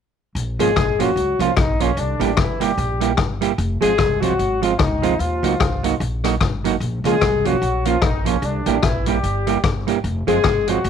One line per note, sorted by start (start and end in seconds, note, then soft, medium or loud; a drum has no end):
0.35 0.56 A#1 loud
0.35 closed hi-hat medium
0.59 0.74 G#1 medium
0.59 0.69 F3 medium
0.59 0.98 G#3 loud
0.59 0.69 A#3 medium
0.59 0.70 C#4 medium
0.59 0.70 F4 medium
0.59 0.98 G#4 loud
0.59 closed hi-hat medium
0.76 1.11 A#1 medium
0.76 kick loud
0.76 cross-stick loud
0.76 closed hi-hat medium
0.99 1.09 F3 medium
0.99 1.41 F#3 medium
0.99 1.10 A#3 medium
0.99 1.10 C#4 medium
0.99 1.10 F4 medium
0.99 1.41 F#4 loud
0.99 closed hi-hat medium
1.16 1.36 C#2 medium
1.16 muted hollow-body jazz guitar stroke soft
1.16 closed hi-hat medium
1.39 1.54 C2 medium
1.39 1.50 F3 medium
1.39 1.57 F3 medium
1.39 1.50 A#3 medium
1.39 1.50 C#4 medium
1.39 1.57 F4 medium
1.39 1.51 F4 medium
1.39 closed hi-hat medium
1.57 1.91 A#1 medium
1.57 1.79 D#3 medium
1.57 1.79 D#4 medium
1.57 kick loud
1.57 cross-stick loud
1.57 closed hi-hat medium
1.80 1.97 C#3 medium
1.80 1.90 F3 medium
1.80 1.90 A#3 medium
1.80 1.97 C#4 medium
1.80 1.91 C#4 medium
1.80 1.91 F4 medium
1.80 closed hi-hat medium
1.97 2.17 C2 loud
1.97 2.38 D3 medium
1.97 2.38 D4 medium
1.97 closed hi-hat medium
2.19 2.35 A1 medium
2.19 2.30 G3 medium
2.19 2.30 A#3 medium
2.19 2.31 E4 medium
2.19 2.31 G4 medium
2.19 closed hi-hat medium
2.37 2.72 G1 medium
2.37 2.61 E3 medium
2.37 2.61 E4 medium
2.37 muted hollow-body jazz guitar stroke soft
2.37 kick loud
2.37 cross-stick loud
2.37 closed hi-hat medium
2.60 2.70 G3 medium
2.60 3.19 G3 medium
2.60 2.71 A#3 medium
2.60 2.71 E4 medium
2.60 3.19 G4 medium
2.60 2.71 G4 medium
2.60 closed hi-hat medium
2.77 3.12 A#1 loud
2.77 muted hollow-body jazz guitar stroke soft
2.77 closed hi-hat medium
3.01 3.11 G3 medium
3.01 3.11 A#3 medium
3.01 3.11 E4 medium
3.01 3.12 G4 medium
3.01 closed hi-hat medium
3.17 3.52 G1 medium
3.17 kick loud
3.17 cross-stick loud
3.17 closed hi-hat medium
3.41 3.51 G3 medium
3.41 3.51 A#3 medium
3.41 3.52 E4 medium
3.41 3.52 G4 medium
3.41 closed hi-hat medium
3.58 3.78 F1 loud
3.58 closed hi-hat medium
3.81 3.96 G#1 medium
3.81 3.91 F3 medium
3.81 3.92 G#3 medium
3.81 4.20 G#3 medium
3.81 3.92 C4 medium
3.81 3.92 F4 medium
3.81 4.20 G#4 loud
3.81 closed hi-hat medium
3.98 4.33 C2 medium
3.98 muted hollow-body jazz guitar stroke soft
3.98 kick loud
3.98 cross-stick loud
3.98 closed hi-hat medium
4.21 4.32 F3 medium
4.21 4.59 F#3 medium
4.21 4.32 G#3 medium
4.21 4.32 C4 medium
4.21 4.33 F4 medium
4.21 4.59 F#4 loud
4.21 closed hi-hat medium
4.38 4.74 G#1 medium
4.38 muted hollow-body jazz guitar stroke soft
4.38 closed hi-hat medium
4.62 4.72 F3 medium
4.62 4.78 F3 medium
4.62 4.72 G#3 medium
4.62 4.73 C4 medium
4.62 4.78 F4 medium
4.62 4.73 F4 medium
4.62 closed hi-hat medium
4.79 5.14 C#2 medium
4.79 5.20 D#3 medium
4.79 5.20 D#4 medium
4.79 kick loud
4.79 cross-stick loud
4.79 closed hi-hat medium
5.02 5.12 F3 medium
5.02 5.13 G#3 medium
5.02 5.13 C4 loud
5.02 5.13 F4 loud
5.02 closed hi-hat medium
5.19 5.40 D#2 medium
5.19 6.01 F3 medium
5.19 6.01 F4 medium
5.19 closed hi-hat medium
5.43 5.57 C#2 medium
5.43 5.53 F#3 medium
5.43 5.53 A#3 medium
5.43 5.54 D#4 medium
5.43 5.54 F#4 medium
5.43 closed hi-hat medium
5.60 5.95 C2 medium
5.60 kick loud
5.60 cross-stick loud
5.60 closed hi-hat medium
5.83 5.93 F#3 medium
5.83 5.94 A#3 medium
5.83 5.94 D#4 medium
5.83 5.94 F#4 medium
5.83 closed hi-hat medium
6.00 6.35 A#1 loud
6.00 muted hollow-body jazz guitar stroke soft
6.00 closed hi-hat medium
6.24 6.34 F#3 medium
6.24 6.34 A#3 medium
6.24 6.34 D#4 medium
6.24 6.34 F#4 medium
6.24 cross-stick medium
6.24 closed hi-hat medium
6.41 6.75 G#1 medium
6.41 kick loud
6.41 cross-stick loud
6.41 closed hi-hat medium
6.64 6.74 F#3 medium
6.64 6.75 A#3 medium
6.64 6.75 D#4 medium
6.64 6.75 F#4 medium
6.64 closed hi-hat medium
6.80 7.01 A#1 loud
6.80 closed hi-hat medium
7.04 7.19 C#2 loud
7.04 7.15 F3 medium
7.04 7.43 G#3 loud
7.04 7.15 A#3 medium
7.04 7.15 C#4 medium
7.04 7.16 F4 medium
7.04 7.43 G#4 loud
7.04 closed hi-hat medium
7.21 7.56 C2 medium
7.21 kick loud
7.21 cross-stick loud
7.21 closed hi-hat medium
7.45 7.55 F3 medium
7.45 7.86 F#3 loud
7.45 7.55 A#3 medium
7.45 7.55 C#4 medium
7.45 7.56 F4 medium
7.45 7.86 F#4 loud
7.45 closed hi-hat medium
7.62 7.96 A#1 medium
7.62 muted hollow-body jazz guitar stroke soft
7.62 closed hi-hat medium
7.85 7.95 F3 medium
7.85 8.03 F3 medium
7.85 7.96 A#3 medium
7.85 7.96 C#4 medium
7.85 8.03 F4 medium
7.85 7.96 F4 medium
7.85 closed hi-hat medium
8.02 8.37 A#1 medium
8.02 8.26 D#3 medium
8.02 8.26 D#4 medium
8.02 kick loud
8.02 cross-stick loud
8.02 closed hi-hat medium
8.25 8.42 C#3 medium
8.25 8.35 F3 medium
8.25 8.36 A#3 medium
8.25 8.42 C#4 medium
8.25 8.36 C#4 medium
8.25 8.36 F4 medium
8.25 closed hi-hat medium
8.42 8.62 C2 loud
8.42 8.83 D3 medium
8.42 8.83 D4 medium
8.42 closed hi-hat medium
8.66 8.80 A1 medium
8.66 8.76 G3 medium
8.66 8.76 A#3 medium
8.66 8.77 E4 medium
8.66 8.77 G4 medium
8.66 closed hi-hat medium
8.83 9.17 A#1 medium
8.83 9.07 E3 medium
8.83 9.07 E4 medium
8.83 muted hollow-body jazz guitar stroke soft
8.83 kick loud
8.83 cross-stick loud
8.83 closed hi-hat medium
9.06 9.16 G3 medium
9.06 9.64 G3 medium
9.06 9.17 A#3 medium
9.06 9.17 E4 medium
9.06 9.64 G4 medium
9.06 9.18 G4 medium
9.06 closed hi-hat medium
9.23 9.58 G1 loud
9.23 muted hollow-body jazz guitar stroke soft
9.23 closed hi-hat medium
9.47 9.57 G3 medium
9.47 9.57 A#3 medium
9.47 9.57 E4 medium
9.47 9.58 G4 medium
9.47 closed hi-hat medium
9.64 9.98 G1 medium
9.64 kick loud
9.64 cross-stick loud
9.64 closed hi-hat medium
9.87 9.97 G3 medium
9.87 9.97 A#3 medium
9.87 9.98 E4 medium
9.87 9.98 G4 medium
9.87 closed hi-hat medium
10.04 10.24 F1 loud
10.04 closed hi-hat medium
10.27 10.42 F#1 medium
10.27 10.37 F3 medium
10.27 10.38 G#3 medium
10.27 10.66 G#3 loud
10.27 10.38 C4 medium
10.27 10.38 F4 medium
10.27 10.66 G#4 loud
10.27 closed hi-hat medium
10.44 10.79 G#1 medium
10.44 kick loud
10.44 cross-stick loud
10.44 closed hi-hat medium
10.67 10.78 F3 medium
10.67 10.90 F#3 medium
10.67 10.78 G#3 medium
10.67 10.78 C4 medium
10.67 10.79 F4 medium
10.67 10.90 F#4 loud
10.67 closed hi-hat medium
10.84 10.90 F1 loud
10.84 muted hollow-body jazz guitar stroke soft
10.84 closed hi-hat medium